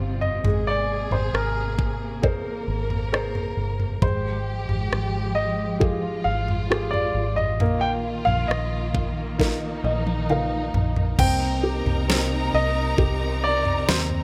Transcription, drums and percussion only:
0.22 floor tom
0.45 floor tom
1.11 floor tom
1.35 cross-stick
1.79 kick
2.23 kick, floor tom
2.90 floor tom
3.14 cross-stick
3.35 floor tom
3.80 floor tom
4.02 kick, floor tom
4.69 floor tom
4.93 cross-stick
5.81 kick, floor tom
6.48 floor tom
6.72 cross-stick
6.94 floor tom
7.38 floor tom
7.60 floor tom
8.27 floor tom
8.51 cross-stick
8.95 kick, floor tom
9.40 kick, snare
9.84 high tom
10.07 high tom
10.29 mid tom
10.74 floor tom
10.96 floor tom
11.19 kick, floor tom, crash
11.86 floor tom
12.10 snare
12.98 kick, floor tom
13.65 floor tom
13.89 snare
14.10 floor tom

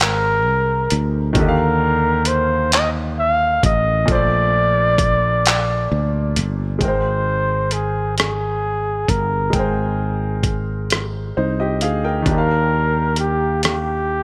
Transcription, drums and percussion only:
0.00 clap, closed hi-hat
0.90 closed hi-hat
1.35 kick, closed hi-hat
2.25 closed hi-hat
2.72 clap, closed hi-hat
3.63 kick, closed hi-hat
4.08 kick, closed hi-hat
4.98 kick, closed hi-hat
5.46 clap, closed hi-hat
6.36 closed hi-hat
6.81 kick, closed hi-hat
7.71 closed hi-hat
8.18 cross-stick, closed hi-hat
9.08 kick, closed hi-hat
9.53 kick, closed hi-hat
10.43 kick, closed hi-hat
10.90 cross-stick, closed hi-hat
11.81 closed hi-hat
12.26 kick, closed hi-hat
13.16 closed hi-hat
13.63 cross-stick, closed hi-hat

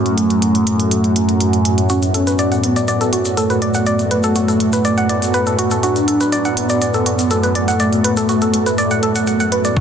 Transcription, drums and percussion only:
0.06 closed hi-hat
0.18 closed hi-hat
0.30 closed hi-hat
0.42 closed hi-hat
0.55 closed hi-hat
0.67 closed hi-hat
0.80 closed hi-hat
0.91 closed hi-hat
1.04 closed hi-hat
1.16 closed hi-hat
1.29 closed hi-hat
1.41 closed hi-hat
1.53 closed hi-hat
1.65 closed hi-hat
1.78 closed hi-hat
1.90 closed hi-hat, shaker
2.02 closed hi-hat, shaker
2.14 closed hi-hat
2.27 closed hi-hat, shaker
2.39 closed hi-hat, shaker
2.52 closed hi-hat, shaker
2.64 closed hi-hat
2.76 closed hi-hat, shaker
2.88 closed hi-hat, shaker
3.01 closed hi-hat, shaker
3.13 closed hi-hat
3.25 closed hi-hat, shaker
3.37 closed hi-hat, shaker
3.50 closed hi-hat, shaker
3.62 closed hi-hat
3.74 closed hi-hat, shaker
3.86 closed hi-hat, shaker
3.99 closed hi-hat, shaker
4.11 closed hi-hat
4.23 closed hi-hat, shaker
4.35 closed hi-hat, shaker
4.48 closed hi-hat, shaker
4.60 closed hi-hat
4.73 closed hi-hat, shaker
4.85 closed hi-hat, shaker
4.97 closed hi-hat, shaker
5.09 closed hi-hat
5.22 closed hi-hat, shaker
5.34 closed hi-hat, shaker
5.46 closed hi-hat, shaker
5.59 closed hi-hat
5.71 closed hi-hat, shaker
5.83 closed hi-hat, shaker
5.96 closed hi-hat, shaker
6.08 closed hi-hat
6.21 closed hi-hat, shaker
6.32 closed hi-hat, shaker
6.45 closed hi-hat, shaker
6.57 closed hi-hat
6.69 closed hi-hat, shaker
6.81 closed hi-hat, shaker
6.94 closed hi-hat, shaker
7.06 closed hi-hat
7.19 closed hi-hat, shaker
7.31 closed hi-hat, shaker
7.43 closed hi-hat, shaker
7.55 closed hi-hat
7.68 closed hi-hat, shaker
7.80 closed hi-hat, shaker
7.93 closed hi-hat, shaker
8.04 closed hi-hat
8.17 closed hi-hat, shaker
8.29 closed hi-hat, shaker
8.42 closed hi-hat, shaker
8.54 closed hi-hat
8.66 closed hi-hat, shaker
8.78 closed hi-hat, shaker
8.91 closed hi-hat, shaker
9.03 closed hi-hat
9.16 closed hi-hat, shaker
9.27 closed hi-hat, shaker
9.40 closed hi-hat, shaker
9.52 closed hi-hat
9.65 closed hi-hat, shaker
9.77 kick, closed hi-hat

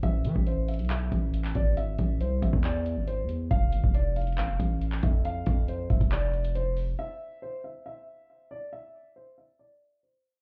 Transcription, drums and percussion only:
0.03 kick, closed hi-hat
0.25 closed hi-hat
0.36 kick
0.47 closed hi-hat
0.68 closed hi-hat, open hi-hat
0.74 closed hi-hat
0.79 closed hi-hat
0.85 closed hi-hat
0.90 clap, closed hi-hat
1.12 kick, closed hi-hat
1.34 closed hi-hat
1.44 clap
1.55 kick, closed hi-hat
1.77 closed hi-hat
1.99 kick, closed hi-hat
2.21 closed hi-hat
2.42 kick, closed hi-hat
2.53 kick
2.64 clap, closed hi-hat
2.86 closed hi-hat
3.08 closed hi-hat
3.29 closed hi-hat
3.51 kick, closed hi-hat
3.72 closed hi-hat
3.84 kick
3.94 closed hi-hat
4.16 closed hi-hat, open hi-hat
4.22 closed hi-hat
4.27 closed hi-hat
4.32 closed hi-hat
4.38 clap, closed hi-hat
4.60 kick, closed hi-hat
4.81 closed hi-hat
4.92 clap
5.03 kick, closed hi-hat
5.25 closed hi-hat
5.46 kick, closed hi-hat
5.68 closed hi-hat
5.90 kick, closed hi-hat
6.01 kick, closed hi-hat
6.12 clap, closed hi-hat
6.34 closed hi-hat
6.44 closed hi-hat
6.55 closed hi-hat
6.77 open hi-hat

